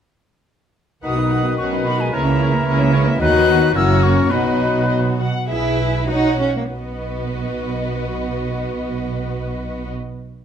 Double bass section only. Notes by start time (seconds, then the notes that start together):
1.04 B1
1.58 B1
2.13 C#2
2.67 C#2
3.21 D#2
3.75 F#1
4.32 B1
5.49 B1
6.71 B1